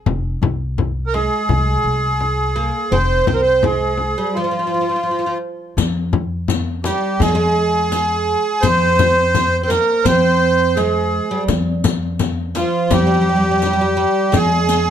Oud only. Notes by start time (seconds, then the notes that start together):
1.14 G#3
2.56 A#3
2.92 C4
3.28 C4
3.64 G#3
4.18 G3
4.37 F3
4.44 F3
4.51 F3
4.59 F3
4.67 F3
4.74 F3
4.81 F3
4.89 F3
4.96 F3
5.03 F3
5.11 F3
5.19 F3
5.26 F3
6.86 G3
7.22 G#3
7.28 A#3
7.35 G#3
8.63 C4
9.63 C4
9.70 A#3
10.06 C4
10.77 G#3
11.31 G3
12.55 F3
12.90 G3
12.99 G3
13.07 G3
13.14 G3
13.21 G3
13.29 G3
13.36 G3
13.44 G3
13.51 G3
13.59 G3
13.66 G3
13.73 G3
13.81 G3
13.97 G3
14.32 G#3